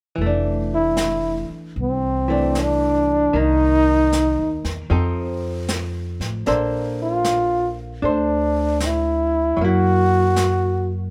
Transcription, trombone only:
0.74 1.48 E4 medium
1.82 2.61 C4 medium
2.60 3.40 D4 medium
3.39 4.67 D#4 medium
7.03 7.74 F4 medium
8.09 8.81 D4 medium
8.81 8.88 D4 soft
8.86 9.66 E4 medium
9.64 10.91 F#4 medium

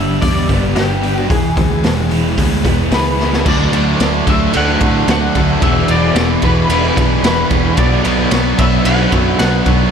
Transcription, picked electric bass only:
0.00 0.20 G1 medium
0.23 0.47 E2 medium
0.49 0.74 G1 medium
0.76 1.26 G1 medium
1.30 1.55 E1 medium
1.57 1.82 D2 medium
1.85 2.09 E1 medium
2.12 2.36 E1 medium
2.38 2.63 D2 medium
2.65 2.90 E1 medium
2.91 3.42 C#2 medium
3.46 3.66 D2 loud
3.73 3.93 D2 loud
4.00 4.20 D2 medium
4.28 4.47 D2 medium
4.56 4.75 D2 loud
4.81 5.01 A2 medium
5.08 5.28 D2 medium
5.35 5.55 D2 medium
5.62 5.82 E1 medium
5.90 6.09 E1 medium
6.15 6.36 E1 medium
6.43 6.63 E1 medium
6.70 6.90 E1 medium
6.97 7.17 B1 loud
7.23 7.44 E1 medium
7.51 7.71 E1 medium
7.78 7.98 B1 loud
8.05 8.25 B1 medium
8.32 8.52 B1 loud
8.59 8.79 B1 medium
8.85 9.05 B1 medium
9.13 9.32 F#2 medium
9.40 9.60 B1 loud
9.66 9.86 B1 medium

